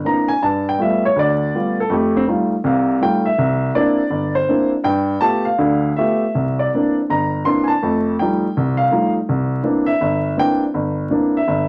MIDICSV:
0, 0, Header, 1, 2, 480
1, 0, Start_track
1, 0, Tempo, 376176
1, 519, Time_signature, 4, 2, 24, 8
1, 1958, Tempo, 366524
1, 6758, Tempo, 375704
1, 9638, Tempo, 366972
1, 15170, End_track
2, 0, Start_track
2, 0, Title_t, "Upright piano"
2, 0, Program_c, 0, 0
2, 58, Note_on_c, 0, 52, 45
2, 61, Note_on_c, 0, 60, 43
2, 62, Note_on_c, 0, 58, 44
2, 65, Note_on_c, 0, 62, 49
2, 79, Note_on_c, 0, 82, 79
2, 361, Note_on_c, 0, 80, 85
2, 368, Note_off_c, 0, 82, 0
2, 383, Note_off_c, 0, 52, 0
2, 384, Note_off_c, 0, 60, 0
2, 385, Note_off_c, 0, 58, 0
2, 386, Note_off_c, 0, 62, 0
2, 516, Note_off_c, 0, 80, 0
2, 543, Note_on_c, 0, 81, 87
2, 544, Note_on_c, 0, 43, 64
2, 840, Note_off_c, 0, 81, 0
2, 879, Note_on_c, 0, 79, 83
2, 950, Note_off_c, 0, 43, 0
2, 1002, Note_on_c, 0, 55, 56
2, 1009, Note_on_c, 0, 59, 50
2, 1012, Note_on_c, 0, 57, 46
2, 1015, Note_on_c, 0, 65, 63
2, 1017, Note_off_c, 0, 79, 0
2, 1043, Note_on_c, 0, 76, 80
2, 1333, Note_off_c, 0, 76, 0
2, 1338, Note_off_c, 0, 55, 0
2, 1341, Note_off_c, 0, 59, 0
2, 1343, Note_off_c, 0, 57, 0
2, 1344, Note_off_c, 0, 65, 0
2, 1344, Note_on_c, 0, 73, 85
2, 1478, Note_on_c, 0, 38, 69
2, 1490, Note_off_c, 0, 73, 0
2, 1520, Note_on_c, 0, 74, 89
2, 1893, Note_off_c, 0, 38, 0
2, 1971, Note_on_c, 0, 59, 49
2, 1972, Note_on_c, 0, 57, 42
2, 1975, Note_on_c, 0, 55, 48
2, 1976, Note_on_c, 0, 65, 56
2, 2245, Note_off_c, 0, 74, 0
2, 2301, Note_off_c, 0, 59, 0
2, 2302, Note_off_c, 0, 57, 0
2, 2303, Note_off_c, 0, 55, 0
2, 2304, Note_off_c, 0, 65, 0
2, 2310, Note_on_c, 0, 69, 82
2, 2429, Note_on_c, 0, 41, 64
2, 2439, Note_on_c, 0, 57, 74
2, 2453, Note_off_c, 0, 69, 0
2, 2480, Note_on_c, 0, 67, 68
2, 2772, Note_off_c, 0, 67, 0
2, 2786, Note_on_c, 0, 60, 89
2, 2854, Note_off_c, 0, 41, 0
2, 2859, Note_off_c, 0, 57, 0
2, 2876, Note_off_c, 0, 60, 0
2, 2928, Note_on_c, 0, 55, 52
2, 2928, Note_on_c, 0, 57, 50
2, 2934, Note_on_c, 0, 63, 49
2, 2948, Note_on_c, 0, 65, 65
2, 3261, Note_off_c, 0, 57, 0
2, 3262, Note_off_c, 0, 55, 0
2, 3264, Note_off_c, 0, 63, 0
2, 3271, Note_off_c, 0, 65, 0
2, 3408, Note_on_c, 0, 36, 78
2, 3418, Note_on_c, 0, 48, 77
2, 3437, Note_on_c, 0, 77, 71
2, 3823, Note_off_c, 0, 36, 0
2, 3828, Note_off_c, 0, 48, 0
2, 3868, Note_off_c, 0, 77, 0
2, 3888, Note_on_c, 0, 55, 57
2, 3895, Note_on_c, 0, 65, 59
2, 3896, Note_on_c, 0, 63, 45
2, 3900, Note_on_c, 0, 57, 49
2, 3912, Note_on_c, 0, 79, 90
2, 4206, Note_off_c, 0, 79, 0
2, 4211, Note_on_c, 0, 76, 86
2, 4219, Note_off_c, 0, 55, 0
2, 4223, Note_off_c, 0, 65, 0
2, 4224, Note_off_c, 0, 63, 0
2, 4225, Note_off_c, 0, 57, 0
2, 4381, Note_on_c, 0, 36, 74
2, 4787, Note_off_c, 0, 36, 0
2, 4802, Note_off_c, 0, 76, 0
2, 4861, Note_on_c, 0, 74, 88
2, 4863, Note_on_c, 0, 58, 61
2, 4864, Note_on_c, 0, 64, 62
2, 4865, Note_on_c, 0, 60, 60
2, 4867, Note_on_c, 0, 62, 57
2, 5185, Note_off_c, 0, 58, 0
2, 5185, Note_off_c, 0, 64, 0
2, 5186, Note_off_c, 0, 60, 0
2, 5187, Note_off_c, 0, 62, 0
2, 5322, Note_on_c, 0, 31, 68
2, 5596, Note_off_c, 0, 74, 0
2, 5647, Note_on_c, 0, 72, 94
2, 5736, Note_off_c, 0, 31, 0
2, 5824, Note_on_c, 0, 60, 48
2, 5826, Note_on_c, 0, 62, 50
2, 5830, Note_on_c, 0, 58, 52
2, 5841, Note_on_c, 0, 64, 55
2, 6086, Note_off_c, 0, 72, 0
2, 6143, Note_off_c, 0, 60, 0
2, 6144, Note_off_c, 0, 62, 0
2, 6146, Note_off_c, 0, 58, 0
2, 6152, Note_off_c, 0, 64, 0
2, 6282, Note_on_c, 0, 43, 75
2, 6291, Note_on_c, 0, 79, 95
2, 6698, Note_off_c, 0, 43, 0
2, 6733, Note_off_c, 0, 79, 0
2, 6766, Note_on_c, 0, 81, 103
2, 6772, Note_on_c, 0, 57, 61
2, 6774, Note_on_c, 0, 59, 50
2, 6777, Note_on_c, 0, 67, 70
2, 6780, Note_on_c, 0, 65, 52
2, 7067, Note_off_c, 0, 81, 0
2, 7077, Note_on_c, 0, 77, 88
2, 7096, Note_off_c, 0, 57, 0
2, 7097, Note_off_c, 0, 59, 0
2, 7098, Note_off_c, 0, 67, 0
2, 7100, Note_off_c, 0, 65, 0
2, 7249, Note_on_c, 0, 50, 79
2, 7250, Note_on_c, 0, 38, 73
2, 7665, Note_off_c, 0, 50, 0
2, 7666, Note_off_c, 0, 38, 0
2, 7680, Note_off_c, 0, 77, 0
2, 7735, Note_on_c, 0, 76, 79
2, 7754, Note_on_c, 0, 59, 50
2, 7755, Note_on_c, 0, 57, 59
2, 7761, Note_on_c, 0, 65, 49
2, 7766, Note_on_c, 0, 67, 59
2, 8080, Note_off_c, 0, 57, 0
2, 8080, Note_off_c, 0, 59, 0
2, 8083, Note_off_c, 0, 65, 0
2, 8085, Note_off_c, 0, 67, 0
2, 8228, Note_on_c, 0, 36, 65
2, 8483, Note_off_c, 0, 76, 0
2, 8537, Note_on_c, 0, 74, 77
2, 8636, Note_off_c, 0, 36, 0
2, 8724, Note_on_c, 0, 52, 52
2, 8727, Note_on_c, 0, 58, 48
2, 8733, Note_on_c, 0, 60, 45
2, 8735, Note_on_c, 0, 62, 57
2, 8978, Note_off_c, 0, 74, 0
2, 9039, Note_off_c, 0, 52, 0
2, 9041, Note_off_c, 0, 58, 0
2, 9043, Note_off_c, 0, 60, 0
2, 9044, Note_off_c, 0, 62, 0
2, 9182, Note_on_c, 0, 31, 68
2, 9189, Note_on_c, 0, 82, 83
2, 9584, Note_off_c, 0, 31, 0
2, 9618, Note_off_c, 0, 82, 0
2, 9636, Note_on_c, 0, 84, 92
2, 9643, Note_on_c, 0, 58, 46
2, 9650, Note_on_c, 0, 52, 48
2, 9656, Note_on_c, 0, 60, 44
2, 9657, Note_on_c, 0, 62, 55
2, 9878, Note_on_c, 0, 80, 64
2, 9910, Note_off_c, 0, 80, 0
2, 9930, Note_on_c, 0, 81, 89
2, 9947, Note_off_c, 0, 84, 0
2, 9977, Note_off_c, 0, 58, 0
2, 9980, Note_off_c, 0, 52, 0
2, 9984, Note_off_c, 0, 60, 0
2, 9984, Note_off_c, 0, 62, 0
2, 10121, Note_on_c, 0, 57, 64
2, 10127, Note_on_c, 0, 41, 67
2, 10538, Note_off_c, 0, 57, 0
2, 10541, Note_off_c, 0, 41, 0
2, 10541, Note_off_c, 0, 81, 0
2, 10606, Note_on_c, 0, 79, 79
2, 10625, Note_on_c, 0, 53, 59
2, 10629, Note_on_c, 0, 55, 55
2, 10632, Note_on_c, 0, 63, 58
2, 10635, Note_on_c, 0, 57, 46
2, 10944, Note_off_c, 0, 53, 0
2, 10947, Note_off_c, 0, 55, 0
2, 10948, Note_off_c, 0, 63, 0
2, 10949, Note_off_c, 0, 57, 0
2, 11099, Note_on_c, 0, 36, 73
2, 11339, Note_off_c, 0, 79, 0
2, 11363, Note_on_c, 0, 77, 99
2, 11498, Note_off_c, 0, 36, 0
2, 11542, Note_on_c, 0, 53, 55
2, 11549, Note_on_c, 0, 57, 45
2, 11552, Note_on_c, 0, 55, 43
2, 11561, Note_on_c, 0, 63, 61
2, 11815, Note_off_c, 0, 77, 0
2, 11874, Note_off_c, 0, 53, 0
2, 11877, Note_off_c, 0, 57, 0
2, 11879, Note_off_c, 0, 55, 0
2, 11884, Note_off_c, 0, 63, 0
2, 12040, Note_on_c, 0, 36, 71
2, 12440, Note_off_c, 0, 36, 0
2, 12489, Note_on_c, 0, 52, 60
2, 12493, Note_on_c, 0, 58, 51
2, 12495, Note_on_c, 0, 60, 55
2, 12499, Note_on_c, 0, 62, 61
2, 12790, Note_on_c, 0, 76, 95
2, 12824, Note_off_c, 0, 52, 0
2, 12826, Note_off_c, 0, 58, 0
2, 12827, Note_off_c, 0, 60, 0
2, 12829, Note_off_c, 0, 62, 0
2, 12982, Note_on_c, 0, 31, 72
2, 13398, Note_off_c, 0, 31, 0
2, 13402, Note_off_c, 0, 76, 0
2, 13450, Note_on_c, 0, 52, 55
2, 13455, Note_on_c, 0, 60, 49
2, 13459, Note_on_c, 0, 58, 45
2, 13465, Note_on_c, 0, 62, 59
2, 13484, Note_on_c, 0, 79, 100
2, 13785, Note_off_c, 0, 79, 0
2, 13794, Note_off_c, 0, 52, 0
2, 13796, Note_off_c, 0, 60, 0
2, 13798, Note_off_c, 0, 58, 0
2, 13801, Note_off_c, 0, 62, 0
2, 13939, Note_on_c, 0, 31, 69
2, 14360, Note_off_c, 0, 31, 0
2, 14407, Note_on_c, 0, 52, 52
2, 14411, Note_on_c, 0, 60, 47
2, 14421, Note_on_c, 0, 58, 53
2, 14421, Note_on_c, 0, 62, 58
2, 14755, Note_off_c, 0, 52, 0
2, 14757, Note_off_c, 0, 60, 0
2, 14759, Note_on_c, 0, 76, 82
2, 14762, Note_off_c, 0, 58, 0
2, 14762, Note_off_c, 0, 62, 0
2, 14900, Note_on_c, 0, 31, 72
2, 15170, Note_off_c, 0, 31, 0
2, 15170, Note_off_c, 0, 76, 0
2, 15170, End_track
0, 0, End_of_file